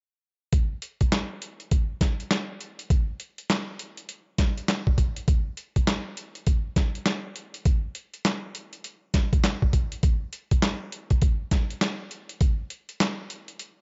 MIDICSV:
0, 0, Header, 1, 2, 480
1, 0, Start_track
1, 0, Tempo, 594059
1, 425, Time_signature, 4, 2, 24, 8
1, 11162, End_track
2, 0, Start_track
2, 0, Title_t, "Drums"
2, 425, Note_on_c, 9, 36, 107
2, 425, Note_on_c, 9, 42, 67
2, 505, Note_off_c, 9, 42, 0
2, 506, Note_off_c, 9, 36, 0
2, 663, Note_on_c, 9, 42, 67
2, 744, Note_off_c, 9, 42, 0
2, 814, Note_on_c, 9, 42, 40
2, 815, Note_on_c, 9, 36, 73
2, 894, Note_off_c, 9, 42, 0
2, 896, Note_off_c, 9, 36, 0
2, 905, Note_on_c, 9, 38, 99
2, 905, Note_on_c, 9, 42, 70
2, 910, Note_on_c, 9, 39, 81
2, 986, Note_off_c, 9, 38, 0
2, 986, Note_off_c, 9, 42, 0
2, 991, Note_off_c, 9, 39, 0
2, 1146, Note_on_c, 9, 42, 67
2, 1227, Note_off_c, 9, 42, 0
2, 1292, Note_on_c, 9, 42, 41
2, 1373, Note_off_c, 9, 42, 0
2, 1385, Note_on_c, 9, 42, 70
2, 1386, Note_on_c, 9, 36, 91
2, 1466, Note_off_c, 9, 42, 0
2, 1467, Note_off_c, 9, 36, 0
2, 1623, Note_on_c, 9, 36, 87
2, 1624, Note_on_c, 9, 42, 79
2, 1626, Note_on_c, 9, 38, 63
2, 1704, Note_off_c, 9, 36, 0
2, 1705, Note_off_c, 9, 42, 0
2, 1707, Note_off_c, 9, 38, 0
2, 1778, Note_on_c, 9, 42, 42
2, 1858, Note_off_c, 9, 42, 0
2, 1864, Note_on_c, 9, 38, 100
2, 1866, Note_on_c, 9, 42, 74
2, 1868, Note_on_c, 9, 39, 83
2, 1945, Note_off_c, 9, 38, 0
2, 1947, Note_off_c, 9, 42, 0
2, 1949, Note_off_c, 9, 39, 0
2, 2105, Note_on_c, 9, 42, 57
2, 2186, Note_off_c, 9, 42, 0
2, 2255, Note_on_c, 9, 42, 53
2, 2336, Note_off_c, 9, 42, 0
2, 2345, Note_on_c, 9, 36, 110
2, 2346, Note_on_c, 9, 42, 67
2, 2426, Note_off_c, 9, 36, 0
2, 2427, Note_off_c, 9, 42, 0
2, 2584, Note_on_c, 9, 42, 63
2, 2664, Note_off_c, 9, 42, 0
2, 2733, Note_on_c, 9, 42, 42
2, 2814, Note_off_c, 9, 42, 0
2, 2825, Note_on_c, 9, 42, 68
2, 2826, Note_on_c, 9, 38, 99
2, 2830, Note_on_c, 9, 39, 81
2, 2906, Note_off_c, 9, 42, 0
2, 2907, Note_off_c, 9, 38, 0
2, 2911, Note_off_c, 9, 39, 0
2, 3065, Note_on_c, 9, 42, 70
2, 3146, Note_off_c, 9, 42, 0
2, 3211, Note_on_c, 9, 42, 42
2, 3292, Note_off_c, 9, 42, 0
2, 3304, Note_on_c, 9, 42, 71
2, 3384, Note_off_c, 9, 42, 0
2, 3542, Note_on_c, 9, 42, 79
2, 3543, Note_on_c, 9, 36, 91
2, 3544, Note_on_c, 9, 38, 66
2, 3623, Note_off_c, 9, 42, 0
2, 3624, Note_off_c, 9, 36, 0
2, 3625, Note_off_c, 9, 38, 0
2, 3697, Note_on_c, 9, 42, 45
2, 3778, Note_off_c, 9, 42, 0
2, 3784, Note_on_c, 9, 38, 98
2, 3786, Note_on_c, 9, 42, 80
2, 3789, Note_on_c, 9, 39, 83
2, 3865, Note_off_c, 9, 38, 0
2, 3867, Note_off_c, 9, 42, 0
2, 3869, Note_off_c, 9, 39, 0
2, 3935, Note_on_c, 9, 36, 83
2, 4015, Note_off_c, 9, 36, 0
2, 4022, Note_on_c, 9, 36, 82
2, 4023, Note_on_c, 9, 42, 59
2, 4103, Note_off_c, 9, 36, 0
2, 4104, Note_off_c, 9, 42, 0
2, 4173, Note_on_c, 9, 42, 57
2, 4254, Note_off_c, 9, 42, 0
2, 4265, Note_on_c, 9, 36, 113
2, 4265, Note_on_c, 9, 42, 66
2, 4345, Note_off_c, 9, 42, 0
2, 4346, Note_off_c, 9, 36, 0
2, 4502, Note_on_c, 9, 42, 61
2, 4583, Note_off_c, 9, 42, 0
2, 4655, Note_on_c, 9, 36, 74
2, 4655, Note_on_c, 9, 42, 45
2, 4736, Note_off_c, 9, 36, 0
2, 4736, Note_off_c, 9, 42, 0
2, 4745, Note_on_c, 9, 38, 102
2, 4745, Note_on_c, 9, 42, 71
2, 4750, Note_on_c, 9, 39, 76
2, 4826, Note_off_c, 9, 38, 0
2, 4826, Note_off_c, 9, 42, 0
2, 4830, Note_off_c, 9, 39, 0
2, 4986, Note_on_c, 9, 42, 68
2, 5067, Note_off_c, 9, 42, 0
2, 5133, Note_on_c, 9, 42, 40
2, 5214, Note_off_c, 9, 42, 0
2, 5224, Note_on_c, 9, 42, 65
2, 5226, Note_on_c, 9, 36, 85
2, 5305, Note_off_c, 9, 42, 0
2, 5307, Note_off_c, 9, 36, 0
2, 5464, Note_on_c, 9, 36, 94
2, 5465, Note_on_c, 9, 42, 80
2, 5466, Note_on_c, 9, 38, 65
2, 5545, Note_off_c, 9, 36, 0
2, 5545, Note_off_c, 9, 42, 0
2, 5547, Note_off_c, 9, 38, 0
2, 5617, Note_on_c, 9, 42, 45
2, 5698, Note_off_c, 9, 42, 0
2, 5702, Note_on_c, 9, 38, 104
2, 5704, Note_on_c, 9, 42, 81
2, 5706, Note_on_c, 9, 39, 80
2, 5782, Note_off_c, 9, 38, 0
2, 5785, Note_off_c, 9, 42, 0
2, 5787, Note_off_c, 9, 39, 0
2, 5944, Note_on_c, 9, 42, 62
2, 6025, Note_off_c, 9, 42, 0
2, 6093, Note_on_c, 9, 42, 55
2, 6174, Note_off_c, 9, 42, 0
2, 6185, Note_on_c, 9, 36, 108
2, 6185, Note_on_c, 9, 42, 67
2, 6266, Note_off_c, 9, 36, 0
2, 6266, Note_off_c, 9, 42, 0
2, 6423, Note_on_c, 9, 42, 67
2, 6504, Note_off_c, 9, 42, 0
2, 6574, Note_on_c, 9, 42, 43
2, 6655, Note_off_c, 9, 42, 0
2, 6665, Note_on_c, 9, 38, 98
2, 6665, Note_on_c, 9, 42, 71
2, 6670, Note_on_c, 9, 39, 75
2, 6746, Note_off_c, 9, 38, 0
2, 6746, Note_off_c, 9, 42, 0
2, 6750, Note_off_c, 9, 39, 0
2, 6907, Note_on_c, 9, 42, 72
2, 6988, Note_off_c, 9, 42, 0
2, 7052, Note_on_c, 9, 42, 43
2, 7133, Note_off_c, 9, 42, 0
2, 7145, Note_on_c, 9, 42, 67
2, 7226, Note_off_c, 9, 42, 0
2, 7384, Note_on_c, 9, 36, 93
2, 7384, Note_on_c, 9, 42, 83
2, 7386, Note_on_c, 9, 38, 63
2, 7465, Note_off_c, 9, 36, 0
2, 7465, Note_off_c, 9, 42, 0
2, 7467, Note_off_c, 9, 38, 0
2, 7536, Note_on_c, 9, 36, 92
2, 7538, Note_on_c, 9, 42, 46
2, 7617, Note_off_c, 9, 36, 0
2, 7618, Note_off_c, 9, 42, 0
2, 7625, Note_on_c, 9, 38, 94
2, 7627, Note_on_c, 9, 42, 76
2, 7629, Note_on_c, 9, 39, 82
2, 7706, Note_off_c, 9, 38, 0
2, 7708, Note_off_c, 9, 42, 0
2, 7710, Note_off_c, 9, 39, 0
2, 7776, Note_on_c, 9, 36, 78
2, 7856, Note_off_c, 9, 36, 0
2, 7863, Note_on_c, 9, 36, 76
2, 7864, Note_on_c, 9, 42, 63
2, 7944, Note_off_c, 9, 36, 0
2, 7944, Note_off_c, 9, 42, 0
2, 8014, Note_on_c, 9, 42, 58
2, 8095, Note_off_c, 9, 42, 0
2, 8104, Note_on_c, 9, 42, 68
2, 8105, Note_on_c, 9, 36, 108
2, 8185, Note_off_c, 9, 42, 0
2, 8186, Note_off_c, 9, 36, 0
2, 8344, Note_on_c, 9, 42, 66
2, 8425, Note_off_c, 9, 42, 0
2, 8495, Note_on_c, 9, 42, 46
2, 8496, Note_on_c, 9, 36, 79
2, 8575, Note_off_c, 9, 42, 0
2, 8577, Note_off_c, 9, 36, 0
2, 8583, Note_on_c, 9, 42, 69
2, 8584, Note_on_c, 9, 38, 108
2, 8588, Note_on_c, 9, 39, 83
2, 8664, Note_off_c, 9, 42, 0
2, 8665, Note_off_c, 9, 38, 0
2, 8669, Note_off_c, 9, 39, 0
2, 8826, Note_on_c, 9, 42, 66
2, 8907, Note_off_c, 9, 42, 0
2, 8972, Note_on_c, 9, 42, 42
2, 8974, Note_on_c, 9, 36, 83
2, 9053, Note_off_c, 9, 42, 0
2, 9055, Note_off_c, 9, 36, 0
2, 9062, Note_on_c, 9, 42, 67
2, 9066, Note_on_c, 9, 36, 94
2, 9143, Note_off_c, 9, 42, 0
2, 9146, Note_off_c, 9, 36, 0
2, 9303, Note_on_c, 9, 36, 99
2, 9303, Note_on_c, 9, 42, 83
2, 9305, Note_on_c, 9, 38, 60
2, 9384, Note_off_c, 9, 36, 0
2, 9384, Note_off_c, 9, 42, 0
2, 9386, Note_off_c, 9, 38, 0
2, 9458, Note_on_c, 9, 42, 46
2, 9538, Note_off_c, 9, 42, 0
2, 9544, Note_on_c, 9, 38, 98
2, 9546, Note_on_c, 9, 42, 77
2, 9549, Note_on_c, 9, 39, 82
2, 9625, Note_off_c, 9, 38, 0
2, 9627, Note_off_c, 9, 42, 0
2, 9629, Note_off_c, 9, 39, 0
2, 9784, Note_on_c, 9, 42, 61
2, 9865, Note_off_c, 9, 42, 0
2, 9933, Note_on_c, 9, 42, 55
2, 10014, Note_off_c, 9, 42, 0
2, 10024, Note_on_c, 9, 42, 69
2, 10025, Note_on_c, 9, 36, 109
2, 10105, Note_off_c, 9, 42, 0
2, 10106, Note_off_c, 9, 36, 0
2, 10264, Note_on_c, 9, 42, 63
2, 10345, Note_off_c, 9, 42, 0
2, 10414, Note_on_c, 9, 42, 47
2, 10495, Note_off_c, 9, 42, 0
2, 10506, Note_on_c, 9, 38, 106
2, 10506, Note_on_c, 9, 42, 75
2, 10511, Note_on_c, 9, 39, 83
2, 10587, Note_off_c, 9, 38, 0
2, 10587, Note_off_c, 9, 42, 0
2, 10591, Note_off_c, 9, 39, 0
2, 10747, Note_on_c, 9, 42, 66
2, 10828, Note_off_c, 9, 42, 0
2, 10893, Note_on_c, 9, 42, 44
2, 10974, Note_off_c, 9, 42, 0
2, 10984, Note_on_c, 9, 42, 69
2, 11065, Note_off_c, 9, 42, 0
2, 11162, End_track
0, 0, End_of_file